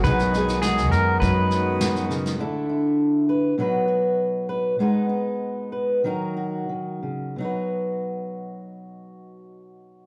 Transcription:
<<
  \new Staff \with { instrumentName = "Pedal steel guitar" } { \time 4/4 \key b \major \tempo 4 = 97 b'4 gis'8 ais'8 b'4. r8 | r1 | r1 | r1 | }
  \new Staff \with { instrumentName = "Steel-string acoustic guitar" } { \time 4/4 \key b \major << { <fis dis' fis' gis'>8 <dis' fis' gis'>8 fis'2. | <a d' e' a'>8 e'4 b'8 <fis dis' fis' b'>8 fis'4 b'8 | <gis b dis' b'>8 dis'4 b'8 <fis dis' fis' ais'>8 fis'4. | <fis dis' fis' b'>1 | } \\ { b,2 fis4 b,8 cis8 | d2 b,2 | b,2 dis4 dis8 cis8 | b,1 | } >> }
  \new Staff \with { instrumentName = "Harmonium" } { \time 4/4 \key b \major <dis gis b fis'>1 | r1 | r1 | r1 | }
  \new Staff \with { instrumentName = "Upright bass" } { \clef bass \time 4/4 \key b \major b,,4. fis,8 fis,2 | r1 | r1 | r1 | }
  \new DrumStaff \with { instrumentName = "Drums" } \drummode { \time 4/4 <bd sn>16 sn16 sn16 sn16 sn16 sn16 sn8 <bd sn>8 sn8 sn16 sn16 sn16 sn16 | r4 r4 r4 r4 | r4 r4 r4 r4 | r4 r4 r4 r4 | }
>>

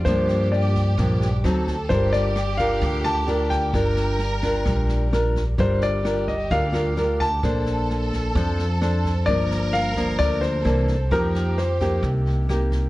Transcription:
<<
  \new Staff \with { instrumentName = "Grand piano" } { \time 4/4 \key g \minor \tempo 4 = 130 c''4 d''4 r2 | c''8 d''4 f''4 a''4 g''8~ | g''2. r4 | c''8 d''4 ees''8 f''4. a''8~ |
a''2~ a''8 r4. | d''4 f''4 d''8 c''4. | bes'4 c''4 r2 | }
  \new Staff \with { instrumentName = "Violin section" } { \time 4/4 \key g \minor g'2. a'4 | g'1 | bes'2.~ bes'8 r8 | g'1 |
a'1 | bes'2. a'4 | g'2.~ g'8 r8 | }
  \new Staff \with { instrumentName = "Nylon-string guitar" } { \time 4/4 \key g \minor << { <f bes d'>2 <f bes d'>8 r8 <fis c' ees'>8 r8 | <d' f' bes'>4 r8 <d' f' bes'>4. <d' f' bes'>4 | <d' f' bes'>4 r8 <d' f' bes'>4. <d' f' bes'>8 r8 | <d' f' bes'>4 <d' f' bes'>8 r8 <d' f' bes'>8 <d' f' bes'>8 <d' f' bes'>8 r8 |
<d' a' c''>2 <d' a' c''>8 r8 <d' a' c''>8 r8 | <f bes d'>4. <f bes d'>4. <e bes d'>8 r8 | <bes ees' g'>4 r8 <bes ees' g'>4. <bes ees' g'>4 | } \\ { g,2 g,4 r4 | g2 d2 | g2 g2 | g2 d2 |
bes2 f2 | g,2 d4 r4 | f2 c2 | } >> }
  \new Staff \with { instrumentName = "Upright bass" } { \clef bass \time 4/4 \key g \minor g,2 bes,,4 d,4 | g,,2 d,2 | g,,2 bes,,2 | g,,2 d,2 |
bes,,2 f,2 | g,,2 d,4 c,4 | f,2 c,2 | }
  \new DrumStaff \with { instrumentName = "Drums" } \drummode { \time 4/4 <bd ss sn>8 sn8 sn8 <bd sn>8 <bd ss sn>8 sn8 <ss sn>8 <bd sn>8 | <bd sn>8 sn8 <ss sn>8 <bd sn>8 <bd sn>8 <ss sn>8 sn8 <bd sn>8 | <bd ss sn>8 sn8 sn8 <bd sn>8 <bd ss sn>8 sn8 <ss sn>8 <bd sn>8 | <bd sn>8 sn8 <ss sn>8 <bd sn>8 <bd sn>8 <ss sn>8 sn8 <bd sn>8 |
<bd ss sn>8 sn8 sn8 <bd sn>8 <bd ss sn>8 sn8 <ss sn>8 <bd sn>8 | <bd sn>8 sn8 <ss sn>8 <bd sn>8 <bd sn>8 <ss sn>8 sn8 <bd sn>8 | <bd ss sn>8 sn8 sn8 <bd sn>8 <bd ss sn>8 sn8 <ss sn>8 <bd sn>8 | }
>>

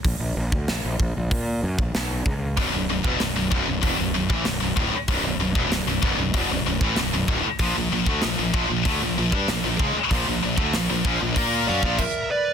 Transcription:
<<
  \new Staff \with { instrumentName = "Lead electric guitar" } { \time 4/4 \key b \minor \tempo 4 = 96 r1 | r1 | r1 | r1 |
r2 r8 eis''8 e''8 d''8 | }
  \new Staff \with { instrumentName = "Lead electric guitar" } { \time 4/4 \key b \minor r1 | r1 | r1 | r1 |
r2 r8 d''8 ais'8 b'8 | }
  \new Staff \with { instrumentName = "Distorted electric guitar" } { \clef bass \time 4/4 \key b \minor r1 | <b,, fis,>16 <b,, fis,>16 <b,, fis,>16 <e, b,>16 <b,, fis,>16 <b,, fis,>16 <b,, fis,>16 <b,, fis,>16 <e, b,>16 <b,, fis,>16 <b,, fis,>16 <a, e>16 <b,, fis,>16 <b,, fis,>16 <d, a,>16 r16 | <b,, fis,>16 <b,, fis,>16 <b,, fis,>16 <e, b,>16 <b,, fis,>16 <b,, fis,>16 <b,, fis,>16 <b,, fis,>16 <e, b,>16 <b,, fis,>16 <b,, fis,>16 <a, e>16 <b,, fis,>16 <b,, fis,>16 <d, a,>16 r16 | <ais, eis>16 <ais, eis>16 <ais, eis>16 <d a>16 <ais, eis>16 <ais, eis>16 <ais, eis>16 <ais, eis>16 <d a>16 <ais, eis>16 <ais, eis>16 <g d'>16 <ais, eis>16 <ais, eis>16 <cis gis>16 r16 |
<ais, eis>16 <ais, eis>16 <ais, eis>16 <d a>16 <ais, eis>16 <ais, eis>16 <ais, eis>16 <ais, eis>16 <ais eis' ais'>8 <fis cis'>16 <ais, eis>16 r4 | }
  \new Staff \with { instrumentName = "Distorted electric guitar" } { \clef bass \time 4/4 \key b \minor r1 | <b,, fis,>16 <b,, fis,>16 <b,, fis,>16 <e, b,>16 <b,, fis,>16 <b,, fis,>16 <b,, fis,>16 <b,, fis,>16 <e, b,>16 <b,, fis,>16 <b,, fis,>16 <a, e>16 <b,, fis,>16 <b,, fis,>16 <d, a,>16 r16 | <b,, fis,>16 <b,, fis,>16 <b,, fis,>16 <e, b,>16 <b,, fis,>16 <b,, fis,>16 <b,, fis,>16 <b,, fis,>16 <e, b,>16 <b,, fis,>16 <b,, fis,>16 <a, e>16 <b,, fis,>16 <b,, fis,>16 <d, a,>16 r16 | <ais, eis>16 <ais, eis>16 <ais, eis>16 <d a>16 <ais, eis>16 <ais, eis>16 <ais, eis>16 <ais, eis>16 <d a>16 <ais, eis>16 <ais, eis>16 <g d'>16 <ais, eis>16 <ais, eis>16 <cis gis>16 r16 |
<ais, eis>16 <ais, eis>16 <ais, eis>16 <d a>16 <ais, eis>16 <ais, eis>16 <ais, eis>16 <ais, eis>16 <ais eis' ais'>8 <fis cis'>16 <ais, eis>16 r4 | }
  \new Staff \with { instrumentName = "Fingered electric bass" } { \clef bass \time 4/4 \key b \minor ais,,16 ais,,16 ais,,16 d,16 ais,,16 ais,,16 ais,,16 ais,,16 ais,8 fis,16 ais,,16 b,,8 cis,8 | b,,,16 b,,,16 b,,,16 e,,16 b,,,16 b,,,16 b,,,16 b,,,16 e,,16 b,,,16 b,,,16 a,,16 b,,,16 b,,,16 d,,16 r16 | b,,,16 b,,,16 b,,,16 e,,16 b,,,16 b,,,16 b,,,16 b,,,16 e,,16 b,,,16 b,,,16 a,,16 b,,,16 b,,,16 d,,16 r16 | ais,,16 ais,,16 ais,,16 d,16 ais,,16 ais,,16 ais,,16 ais,,16 d,16 ais,,16 ais,,16 g,16 ais,,16 ais,,16 cis,16 r16 |
ais,,16 ais,,16 ais,,16 d,16 ais,,16 ais,,16 ais,,16 ais,,16 ais,8 fis,16 ais,,16 r4 | }
  \new DrumStaff \with { instrumentName = "Drums" } \drummode { \time 4/4 <hho bd>8. bd16 <hho sn>8 bd8 <hho bd>8. bd16 <hho sn>8 bd8 | <hho bd>8. bd16 <hho sn>8 bd8 <hho bd>8. bd16 <hho sn>8 bd8 | <hho bd>8. bd16 <hho sn>8 bd8 <hho bd>8. bd16 <hho sn>8 bd8 | <hho bd>8. bd16 <hho sn>8 bd8 <hho bd>8. bd16 <hho sn>8 bd8 |
<hho bd>8. bd16 <hho sn>8 bd8 <hho bd>8. bd16 <cymc bd>4 | }
>>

